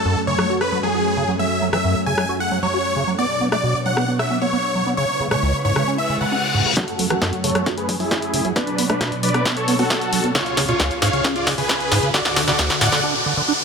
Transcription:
Already playing: analog synth pad F#2 F#3 A3 C#4, supersaw synth A4
0.05 acid bass F#2
0.27 acid bass C#3, supersaw synth C#5
0.39 acid bass F#3, cross-stick
0.50 acid bass F#4
0.61 supersaw synth B4, cross-stick
0.72 acid bass F#3
0.83 acid bass F#3, supersaw synth G#4
0.95 acid bass F#4
1.17 acid bass C#3
1.28 acid bass F#3
1.39 acid bass F#3, supersaw synth E5
1.62 acid bass F#3
1.73 acid bass E3, supersaw synth E5, cross-stick
1.84 acid bass F#2
2.06 acid bass C#3, supersaw synth G#5
2.18 acid bass F#3, cross-stick
2.29 acid bass F#4
2.40 supersaw synth F#5
2.51 acid bass F#3
2.63 acid bass F#3, supersaw synth C#5
2.74 acid bass F#4
2.96 acid bass C#3
3.07 acid bass F#3
3.19 analog synth pad B2 F#3 D4 C#5, acid bass B3, supersaw synth D5
3.41 acid bass B3
3.52 acid bass A3, supersaw synth D5, cross-stick
3.63 acid bass B2
3.86 acid bass F#3, supersaw synth F#5
3.97 acid bass B3, cross-stick
4.08 acid bass B3
4.19 supersaw synth E5, cross-stick
4.30 acid bass B3
4.42 acid bass B3, supersaw synth C#5
4.53 acid bass B3
4.75 acid bass F#3
4.87 acid bass B3
4.97 acid bass C#3, analog synth pad C#3 G#3 E4 B4, supersaw synth C#5
5.20 acid bass C#3
5.31 acid bass B2, supersaw synth C#5, cross-stick
5.42 acid bass C#2
5.65 acid bass G#2, supersaw synth C#5
5.76 acid bass C#3, cross-stick
5.87 acid bass C#4, reverse cymbal
5.98 supersaw synth E5
6.10 acid bass C#3
6.21 acid bass C#3, supersaw synth F#5
6.32 acid bass C#4
6.54 acid bass G#2
6.66 acid bass C#3
6.77 analog synth pad F#2 F#3 A3 C#4, acid bass F#3, supersaw synth F#4 A4, kick, snare, closed hi-hat, riser
6.88 closed hi-hat
6.99 acid bass F#3, open hi-hat
7.10 acid bass E3, supersaw synth F#4 A4, cross-stick, closed hi-hat
7.22 acid bass F#2, kick, snare, closed hi-hat
7.33 closed hi-hat
7.44 acid bass C#3, supersaw synth A4 C#5, open hi-hat
7.50 closed hi-hat
7.55 acid bass F#3, cross-stick, closed hi-hat
7.66 acid bass F#4, kick, snare, closed hi-hat
7.77 supersaw synth G#4 B4, closed hi-hat
7.89 acid bass F#3, kick, open hi-hat
8.00 acid bass F#3, supersaw synth E4 G#4, open hi-hat
8.11 acid bass F#4, kick, snare, closed hi-hat
8.22 closed hi-hat
8.34 acid bass C#3, open hi-hat
8.45 acid bass F#3, closed hi-hat
8.56 analog synth pad B2 D4 C#5, acid bass B3, supersaw synth D4 B4, kick, snare, closed hi-hat
8.67 closed hi-hat
8.78 acid bass B3, open hi-hat
8.89 acid bass A3, supersaw synth D4 B4, cross-stick, closed hi-hat
9.01 acid bass B2, kick, snare, closed hi-hat
9.12 closed hi-hat
9.23 acid bass F#3, supersaw synth B4 D5, open hi-hat
9.34 acid bass B3, cross-stick, closed hi-hat
9.45 acid bass B3, kick, snare, closed hi-hat
9.57 supersaw synth A4 C#5, closed hi-hat
9.68 acid bass B3, open hi-hat
9.79 acid bass B3, supersaw synth F#4 A4, open hi-hat
9.90 acid bass B3, kick, snare, closed hi-hat
10.01 closed hi-hat
10.13 acid bass F#3, open hi-hat
10.24 acid bass B3, closed hi-hat
10.35 analog synth pad C#2 C#3 F4 G#4, acid bass C#3, supersaw synth F4 C#5, kick, snare, closed hi-hat
10.46 closed hi-hat
10.57 acid bass C#3, snare, open hi-hat
10.69 acid bass B2, supersaw synth F4 C#5, closed hi-hat
10.80 acid bass C#2, kick, snare, closed hi-hat
10.91 closed hi-hat
11.02 acid bass G#2, supersaw synth C#5 F5, snare, open hi-hat
11.13 acid bass C#3, closed hi-hat
11.24 acid bass C#4, kick, snare, closed hi-hat
11.36 supersaw synth F4 D5, closed hi-hat
11.47 acid bass C#3, kick, snare, open hi-hat
11.58 acid bass C#3, supersaw synth G#4 B4, open hi-hat
11.69 acid bass C#4, kick, snare, closed hi-hat
11.80 closed hi-hat
11.92 acid bass G#2, snare, open hi-hat
12.03 acid bass C#3, closed hi-hat
12.14 analog synth pad D2 D3 F#4 A4, acid bass D3, supersaw synth F#4 D5, kick, snare, closed hi-hat
12.25 snare, closed hi-hat
12.36 acid bass D3, snare, open hi-hat
12.47 acid bass C#3, supersaw synth F#4 D5, snare, closed hi-hat
12.59 acid bass D2, kick, snare, closed hi-hat
12.70 snare, closed hi-hat
12.81 acid bass A2, supersaw synth D5 F#5, snare, open hi-hat
12.87 closed hi-hat
12.92 acid bass D3, snare, closed hi-hat
13.04 acid bass D4
13.26 acid bass D3
13.37 acid bass D3
13.48 acid bass D4

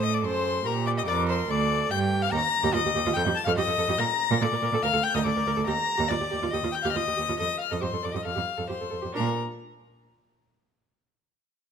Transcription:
Already playing: cello A2, viola A4
0.02 violin D#5 D#6
0.14 violin D5 D6
0.23 cello F#2, violin C5 C6
0.65 cello A#2, viola G4, violin A#4 A#5
0.87 violin D5 D6
0.97 violin D#5 D#6
1.06 cello F2, viola A#4, violin D5 D6
1.29 violin C5 C6
1.48 cello D2, viola A4, violin D5 D6
1.91 cello G2, viola G4, violin G5 G6
2.22 violin F5 F6
2.31 cello D#2, viola G4, violin A#5 A#6
2.63 cello D#2, viola G4
2.72 cello D#2, viola F4, violin D#5 D#6
2.86 cello D#2, viola G4
2.95 cello D#2, viola G4
3.06 cello D#2, viola F4
3.14 cello F2, viola A4, violin G5 G6
3.26 cello F2, viola G4
3.35 violin A5 A6
3.45 cello F2, viola A4, violin F5 F6
3.56 cello F2, viola G4, violin D#5 D#6
3.68 cello F2, viola A4
3.77 cello F2, viola A4
3.89 cello F2, viola G4
3.98 cello A#2, viola A#4, violin A#5 A#6
4.30 cello A#2, viola A#4
4.40 cello A#2, viola A4, violin D5 D6
4.52 cello A#2, viola A#4
4.62 cello A#2, viola A#4
4.72 cello A#2, viola A4
4.83 cello D2, viola A#4, violin F5 F6
4.93 cello D2, viola A4
5.03 violin G5 G6
5.14 cello D2, viola A#4, violin D#5 D#6
5.24 cello D2, viola A4, violin D5 D6
5.37 cello D2, viola A#4
5.47 cello D2, viola A#4
5.57 cello D2, viola A4
5.67 cello D#2, viola G4, violin A#5 A#6
5.98 cello D#2, viola G4
6.08 cello D#2, viola F4, violin D5 D6
6.20 cello D#2, viola G4
6.30 cello D#2, viola G4
6.43 cello D#2, viola F4
6.51 cello D#2, viola G4, violin D#5 D#6
6.64 cello D#2, viola F4
6.72 violin G5 G6
6.83 cello D#2, viola G4, violin F5 F6
6.92 cello D#2, viola F4, violin D#5 D#6
7.07 cello D#2, viola G4
7.17 cello D#2, viola G4
7.29 cello D#2, viola F4
7.37 cello F2, viola A4, violin D#5 D#6
7.58 violin F5 F6
7.70 cello F2, viola A4, violin D#5 D#6
7.81 cello F2, viola G4, violin C5 C6
7.93 cello F2, viola A4
8.03 cello F2, viola A4, violin D5 D6
8.12 cello F2, viola G4, violin D#5 D#6
8.24 cello F2, viola A4, violin F5 F6
8.35 cello F2, viola G4
8.57 cello F2, viola A4
8.68 cello F2, viola G4, violin C5 C6
8.81 cello F2, viola A4
8.90 cello F2, viola A4
9.02 cello F2, viola G4
9.12 cello A#2, viola D4, violin A#4 A#5

